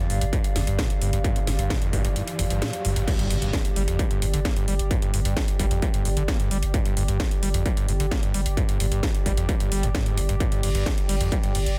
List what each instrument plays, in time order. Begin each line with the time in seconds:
Already playing: ambient pad G4 D5 F5, riser
0.10 sub bass G1, acid bass G2, open hi-hat
0.21 sub bass G1, acid bass G2, closed hi-hat
0.33 acid bass G2, kick, closed hi-hat
0.44 closed hi-hat
0.56 sub bass G1, acid bass F2, snare, open hi-hat
0.67 sub bass G1, acid bass G2, closed hi-hat
0.79 acid bass A#2, kick, snare, closed hi-hat
0.90 closed hi-hat
1.02 sub bass G1, acid bass G2, open hi-hat
1.13 sub bass G1, acid bass G2, closed hi-hat
1.24 acid bass G2, kick, closed hi-hat
1.36 acid bass G3, closed hi-hat
1.47 sub bass G1, acid bass G2, snare, open hi-hat
1.59 sub bass G1, acid bass G2, closed hi-hat
1.70 acid bass A#2, kick, snare, closed hi-hat
1.82 acid bass F2, closed hi-hat
1.93 sub bass G1, acid bass G2, kick, open hi-hat
2.05 sub bass G1, acid bass G2, closed hi-hat
2.16 acid bass G2, closed hi-hat
2.28 closed hi-hat
2.39 sub bass G1, acid bass F2, open hi-hat
2.50 sub bass G1, acid bass G2, closed hi-hat
2.62 acid bass A#2, snare, closed hi-hat
2.73 closed hi-hat
2.85 sub bass G1, acid bass G2, open hi-hat
2.96 sub bass G1, acid bass G2, closed hi-hat
3.08 acid bass G2, ambient pad G4, kick, closed hi-hat, crash, impact
3.19 acid bass G2, closed hi-hat
3.29 sub bass G1, acid bass G2, ambient pad D5, open hi-hat
3.42 sub bass G1, acid bass G2, closed hi-hat
3.53 kick, snare, closed hi-hat
3.65 closed hi-hat
3.76 sub bass G1, acid bass G3, ambient pad G5, open hi-hat
3.88 sub bass G1, acid bass F2, closed hi-hat
3.99 acid bass G3, kick, closed hi-hat
4.11 acid bass G2, closed hi-hat
4.22 sub bass G1, acid bass G2, open hi-hat
4.34 sub bass G1, acid bass D3, closed hi-hat
4.45 acid bass A#3, kick, snare, closed hi-hat
4.56 acid bass G2, closed hi-hat
4.68 sub bass G1, acid bass G3, open hi-hat
4.79 sub bass G1, closed hi-hat
4.91 acid bass G2, kick, closed hi-hat
5.02 acid bass G2, closed hi-hat
5.14 sub bass G1, acid bass G2, open hi-hat
5.25 sub bass G1, acid bass G2, closed hi-hat
5.37 kick, snare, closed hi-hat
5.48 closed hi-hat
5.59 sub bass G1, acid bass G3, kick, open hi-hat
5.71 sub bass G1, acid bass F2, closed hi-hat
5.82 acid bass G3, kick, closed hi-hat
5.94 acid bass G2, closed hi-hat
6.05 sub bass G1, acid bass G2, open hi-hat
6.17 sub bass G1, acid bass D3, closed hi-hat
6.28 acid bass A#3, kick, snare, closed hi-hat
6.40 acid bass G2, closed hi-hat
6.51 sub bass G1, acid bass G3, open hi-hat
6.63 sub bass G1, closed hi-hat
6.74 acid bass G2, kick, closed hi-hat
6.85 acid bass G2, closed hi-hat
6.97 sub bass G1, acid bass G2, open hi-hat
7.08 sub bass G1, acid bass G2, closed hi-hat
7.20 kick, snare, closed hi-hat
7.31 closed hi-hat
7.43 sub bass G1, acid bass G3, open hi-hat
7.54 sub bass G1, acid bass F2, closed hi-hat
7.66 acid bass G3, kick, closed hi-hat
7.77 acid bass G2, closed hi-hat
7.89 sub bass G1, acid bass G2, open hi-hat
8.00 sub bass G1, acid bass D3, closed hi-hat
8.11 acid bass A#3, kick, snare, closed hi-hat
8.23 acid bass G2, closed hi-hat
8.34 sub bass G1, acid bass G3, open hi-hat
8.46 sub bass G1, closed hi-hat
8.57 acid bass G2, kick, closed hi-hat
8.69 acid bass G2, closed hi-hat
8.80 sub bass G1, acid bass G2, open hi-hat
8.92 sub bass G1, acid bass G2, closed hi-hat
9.03 kick, snare, closed hi-hat
9.15 closed hi-hat
9.26 sub bass G1, acid bass G3, kick, open hi-hat
9.37 sub bass G1, acid bass F2, closed hi-hat
9.49 acid bass G3, kick, closed hi-hat
9.60 acid bass G2, closed hi-hat
9.72 sub bass G1, acid bass G3, open hi-hat
9.83 sub bass G1, acid bass F2, closed hi-hat
9.95 acid bass G#2, kick, snare, closed hi-hat
10.06 closed hi-hat
10.18 acid bass G1, sub bass G1, open hi-hat
10.29 sub bass G1, acid bass G2, closed hi-hat
10.40 acid bass G2, kick, closed hi-hat
10.52 acid bass G2, closed hi-hat
10.63 sub bass G1, acid bass G2, open hi-hat, ride
10.75 sub bass G1, acid bass G2, closed hi-hat
10.86 kick, snare, closed hi-hat
10.98 closed hi-hat
11.09 sub bass G1, acid bass G3, open hi-hat, ride
11.21 sub bass G1, acid bass F2, closed hi-hat
11.32 acid bass G3, kick, closed hi-hat
11.43 acid bass G2, closed hi-hat
11.55 sub bass G1, acid bass G2, open hi-hat, ride
11.66 sub bass G1, closed hi-hat